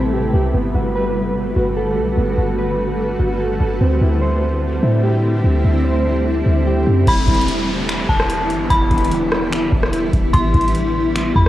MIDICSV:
0, 0, Header, 1, 7, 480
1, 0, Start_track
1, 0, Key_signature, 1, "minor"
1, 0, Tempo, 408163
1, 637, Time_signature, 4, 2, 24, 8
1, 13511, End_track
2, 0, Start_track
2, 0, Title_t, "Synth bell"
2, 0, Program_c, 0, 98
2, 8327, Note_on_c, 0, 83, 117
2, 8774, Note_off_c, 0, 83, 0
2, 9515, Note_on_c, 0, 81, 74
2, 10193, Note_off_c, 0, 81, 0
2, 10234, Note_on_c, 0, 83, 102
2, 10687, Note_off_c, 0, 83, 0
2, 12152, Note_on_c, 0, 84, 101
2, 12606, Note_off_c, 0, 84, 0
2, 13358, Note_on_c, 0, 83, 79
2, 13511, Note_off_c, 0, 83, 0
2, 13511, End_track
3, 0, Start_track
3, 0, Title_t, "Synth keys"
3, 0, Program_c, 1, 88
3, 0, Note_on_c, 1, 59, 85
3, 0, Note_on_c, 1, 60, 70
3, 0, Note_on_c, 1, 69, 89
3, 155, Note_on_c, 1, 67, 79
3, 159, Note_off_c, 1, 59, 0
3, 382, Note_off_c, 1, 67, 0
3, 396, Note_on_c, 1, 67, 81
3, 636, Note_on_c, 1, 59, 88
3, 637, Note_off_c, 1, 67, 0
3, 638, Note_off_c, 1, 69, 0
3, 641, Note_off_c, 1, 60, 0
3, 875, Note_on_c, 1, 66, 71
3, 1119, Note_on_c, 1, 71, 90
3, 1821, Note_off_c, 1, 66, 0
3, 1835, Note_on_c, 1, 66, 74
3, 2077, Note_off_c, 1, 59, 0
3, 2077, Note_on_c, 1, 69, 85
3, 2305, Note_off_c, 1, 69, 0
3, 2320, Note_on_c, 1, 69, 81
3, 2558, Note_off_c, 1, 71, 0
3, 2559, Note_on_c, 1, 59, 88
3, 2780, Note_off_c, 1, 66, 0
3, 2795, Note_on_c, 1, 66, 71
3, 3038, Note_on_c, 1, 71, 88
3, 3739, Note_off_c, 1, 66, 0
3, 3753, Note_on_c, 1, 66, 78
3, 3759, Note_off_c, 1, 69, 0
3, 3995, Note_on_c, 1, 69, 80
3, 3999, Note_off_c, 1, 59, 0
3, 4225, Note_off_c, 1, 69, 0
3, 4239, Note_on_c, 1, 69, 81
3, 4476, Note_off_c, 1, 66, 0
3, 4478, Note_off_c, 1, 71, 0
3, 4479, Note_off_c, 1, 69, 0
3, 4480, Note_on_c, 1, 60, 92
3, 4726, Note_on_c, 1, 64, 79
3, 4955, Note_on_c, 1, 72, 89
3, 5664, Note_off_c, 1, 64, 0
3, 5679, Note_on_c, 1, 64, 82
3, 5916, Note_on_c, 1, 67, 87
3, 5919, Note_off_c, 1, 60, 0
3, 6143, Note_off_c, 1, 67, 0
3, 6157, Note_on_c, 1, 67, 74
3, 6397, Note_off_c, 1, 72, 0
3, 6400, Note_on_c, 1, 60, 87
3, 6624, Note_off_c, 1, 64, 0
3, 6638, Note_on_c, 1, 64, 73
3, 6872, Note_on_c, 1, 72, 90
3, 7589, Note_off_c, 1, 64, 0
3, 7597, Note_off_c, 1, 67, 0
3, 7603, Note_on_c, 1, 64, 70
3, 7839, Note_off_c, 1, 60, 0
3, 7840, Note_on_c, 1, 67, 85
3, 8056, Note_off_c, 1, 67, 0
3, 8070, Note_on_c, 1, 67, 90
3, 8314, Note_off_c, 1, 67, 0
3, 8315, Note_off_c, 1, 72, 0
3, 8320, Note_off_c, 1, 64, 0
3, 13511, End_track
4, 0, Start_track
4, 0, Title_t, "Ambient pad"
4, 0, Program_c, 2, 92
4, 0, Note_on_c, 2, 48, 78
4, 0, Note_on_c, 2, 55, 68
4, 0, Note_on_c, 2, 57, 71
4, 0, Note_on_c, 2, 64, 85
4, 0, Note_on_c, 2, 71, 70
4, 599, Note_off_c, 2, 48, 0
4, 599, Note_off_c, 2, 64, 0
4, 638, Note_on_c, 2, 50, 80
4, 638, Note_on_c, 2, 66, 83
4, 4431, Note_off_c, 2, 55, 0
4, 4431, Note_off_c, 2, 71, 0
4, 4439, Note_off_c, 2, 50, 0
4, 4439, Note_off_c, 2, 66, 0
4, 4478, Note_on_c, 2, 50, 82
4, 4478, Note_on_c, 2, 55, 76
4, 4478, Note_on_c, 2, 60, 72
4, 4478, Note_on_c, 2, 64, 87
4, 8271, Note_off_c, 2, 57, 0
4, 8279, Note_off_c, 2, 55, 0
4, 8279, Note_off_c, 2, 60, 0
4, 8280, Note_off_c, 2, 50, 0
4, 8280, Note_off_c, 2, 64, 0
4, 8316, Note_on_c, 2, 52, 74
4, 8316, Note_on_c, 2, 59, 75
4, 8316, Note_on_c, 2, 64, 88
4, 8317, Note_on_c, 2, 50, 82
4, 8317, Note_on_c, 2, 55, 72
4, 12119, Note_off_c, 2, 50, 0
4, 12119, Note_off_c, 2, 52, 0
4, 12157, Note_on_c, 2, 48, 79
4, 12157, Note_on_c, 2, 57, 74
4, 13511, Note_off_c, 2, 48, 0
4, 13511, Note_off_c, 2, 55, 0
4, 13511, Note_off_c, 2, 57, 0
4, 13511, Note_off_c, 2, 59, 0
4, 13511, Note_off_c, 2, 64, 0
4, 13511, End_track
5, 0, Start_track
5, 0, Title_t, "808-style bass"
5, 0, Program_c, 3, 38
5, 0, Note_on_c, 3, 33, 103
5, 379, Note_off_c, 3, 33, 0
5, 397, Note_on_c, 3, 36, 99
5, 628, Note_off_c, 3, 36, 0
5, 638, Note_on_c, 3, 31, 111
5, 868, Note_off_c, 3, 31, 0
5, 878, Note_on_c, 3, 31, 100
5, 1800, Note_off_c, 3, 31, 0
5, 1838, Note_on_c, 3, 31, 106
5, 2318, Note_on_c, 3, 35, 95
5, 2335, Note_off_c, 3, 31, 0
5, 2546, Note_off_c, 3, 35, 0
5, 2558, Note_on_c, 3, 31, 109
5, 2788, Note_off_c, 3, 31, 0
5, 2798, Note_on_c, 3, 31, 111
5, 3720, Note_off_c, 3, 31, 0
5, 3759, Note_on_c, 3, 31, 104
5, 4219, Note_off_c, 3, 31, 0
5, 4239, Note_on_c, 3, 31, 105
5, 4469, Note_off_c, 3, 31, 0
5, 4479, Note_on_c, 3, 38, 108
5, 4709, Note_off_c, 3, 38, 0
5, 4718, Note_on_c, 3, 38, 104
5, 5640, Note_off_c, 3, 38, 0
5, 5678, Note_on_c, 3, 45, 102
5, 6369, Note_off_c, 3, 45, 0
5, 6399, Note_on_c, 3, 38, 111
5, 6629, Note_off_c, 3, 38, 0
5, 6639, Note_on_c, 3, 38, 104
5, 7560, Note_off_c, 3, 38, 0
5, 7598, Note_on_c, 3, 38, 105
5, 8059, Note_off_c, 3, 38, 0
5, 8079, Note_on_c, 3, 42, 103
5, 8309, Note_off_c, 3, 42, 0
5, 8318, Note_on_c, 3, 28, 109
5, 8549, Note_off_c, 3, 28, 0
5, 8557, Note_on_c, 3, 28, 113
5, 9479, Note_off_c, 3, 28, 0
5, 9516, Note_on_c, 3, 28, 106
5, 9998, Note_on_c, 3, 31, 97
5, 10015, Note_off_c, 3, 28, 0
5, 10226, Note_off_c, 3, 31, 0
5, 10238, Note_on_c, 3, 28, 109
5, 10469, Note_off_c, 3, 28, 0
5, 10478, Note_on_c, 3, 28, 111
5, 11399, Note_off_c, 3, 28, 0
5, 11436, Note_on_c, 3, 28, 100
5, 11897, Note_off_c, 3, 28, 0
5, 11917, Note_on_c, 3, 28, 107
5, 12148, Note_off_c, 3, 28, 0
5, 12158, Note_on_c, 3, 33, 116
5, 12388, Note_off_c, 3, 33, 0
5, 12397, Note_on_c, 3, 33, 109
5, 13319, Note_off_c, 3, 33, 0
5, 13355, Note_on_c, 3, 40, 106
5, 13511, Note_off_c, 3, 40, 0
5, 13511, End_track
6, 0, Start_track
6, 0, Title_t, "Downlifter"
6, 0, Program_c, 4, 103
6, 8319, Note_on_c, 4, 60, 88
6, 12158, Note_off_c, 4, 60, 0
6, 13511, End_track
7, 0, Start_track
7, 0, Title_t, "Drums"
7, 8317, Note_on_c, 9, 42, 77
7, 8318, Note_on_c, 9, 36, 119
7, 8434, Note_off_c, 9, 42, 0
7, 8436, Note_off_c, 9, 36, 0
7, 8557, Note_on_c, 9, 36, 98
7, 8558, Note_on_c, 9, 42, 45
7, 8638, Note_off_c, 9, 42, 0
7, 8638, Note_on_c, 9, 42, 58
7, 8675, Note_off_c, 9, 36, 0
7, 8718, Note_off_c, 9, 42, 0
7, 8718, Note_on_c, 9, 42, 68
7, 8800, Note_off_c, 9, 42, 0
7, 8800, Note_on_c, 9, 42, 89
7, 8917, Note_off_c, 9, 42, 0
7, 9280, Note_on_c, 9, 26, 117
7, 9280, Note_on_c, 9, 42, 86
7, 9397, Note_off_c, 9, 42, 0
7, 9398, Note_off_c, 9, 26, 0
7, 9516, Note_on_c, 9, 36, 94
7, 9633, Note_off_c, 9, 36, 0
7, 9641, Note_on_c, 9, 37, 98
7, 9758, Note_on_c, 9, 42, 82
7, 9759, Note_off_c, 9, 37, 0
7, 9876, Note_off_c, 9, 42, 0
7, 9998, Note_on_c, 9, 42, 71
7, 10115, Note_off_c, 9, 42, 0
7, 10237, Note_on_c, 9, 42, 73
7, 10238, Note_on_c, 9, 36, 127
7, 10355, Note_off_c, 9, 42, 0
7, 10356, Note_off_c, 9, 36, 0
7, 10478, Note_on_c, 9, 36, 95
7, 10479, Note_on_c, 9, 42, 44
7, 10559, Note_off_c, 9, 42, 0
7, 10559, Note_on_c, 9, 42, 61
7, 10596, Note_off_c, 9, 36, 0
7, 10639, Note_off_c, 9, 42, 0
7, 10639, Note_on_c, 9, 42, 73
7, 10720, Note_off_c, 9, 42, 0
7, 10720, Note_on_c, 9, 42, 85
7, 10838, Note_off_c, 9, 42, 0
7, 10960, Note_on_c, 9, 37, 101
7, 11077, Note_off_c, 9, 37, 0
7, 11201, Note_on_c, 9, 42, 84
7, 11202, Note_on_c, 9, 26, 123
7, 11319, Note_off_c, 9, 42, 0
7, 11320, Note_off_c, 9, 26, 0
7, 11436, Note_on_c, 9, 36, 93
7, 11553, Note_off_c, 9, 36, 0
7, 11561, Note_on_c, 9, 37, 99
7, 11678, Note_on_c, 9, 42, 78
7, 11679, Note_off_c, 9, 37, 0
7, 11795, Note_off_c, 9, 42, 0
7, 11917, Note_on_c, 9, 36, 96
7, 11917, Note_on_c, 9, 42, 70
7, 12034, Note_off_c, 9, 36, 0
7, 12035, Note_off_c, 9, 42, 0
7, 12157, Note_on_c, 9, 42, 77
7, 12158, Note_on_c, 9, 36, 123
7, 12274, Note_off_c, 9, 42, 0
7, 12276, Note_off_c, 9, 36, 0
7, 12397, Note_on_c, 9, 36, 96
7, 12397, Note_on_c, 9, 42, 44
7, 12477, Note_off_c, 9, 42, 0
7, 12477, Note_on_c, 9, 42, 58
7, 12515, Note_off_c, 9, 36, 0
7, 12558, Note_off_c, 9, 42, 0
7, 12558, Note_on_c, 9, 42, 71
7, 12639, Note_off_c, 9, 42, 0
7, 12639, Note_on_c, 9, 42, 89
7, 12757, Note_off_c, 9, 42, 0
7, 13119, Note_on_c, 9, 42, 89
7, 13120, Note_on_c, 9, 26, 118
7, 13237, Note_off_c, 9, 26, 0
7, 13237, Note_off_c, 9, 42, 0
7, 13355, Note_on_c, 9, 36, 95
7, 13472, Note_off_c, 9, 36, 0
7, 13511, End_track
0, 0, End_of_file